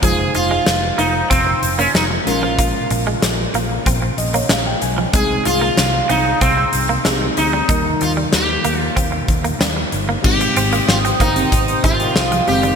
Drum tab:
CC |----------------|----------------|----------------|----------------|
HH |x-x-x-x-x-xxx-x-|x-x-x-x-x-xxx-x-|x-x-x-x-x-x-x-x-|x-x-x-x-x-xxx-x-|
SD |----o-------o---|----o-------o---|----o-------o---|----o-------o---|
BD |o-------o-------|o-------o-------|o-------o-------|o-------o-o-----|

CC |x---------------|
HH |-xxx-xxxxxxx-xox|
SD |----o-------o---|
BD |o-----o-o-o-----|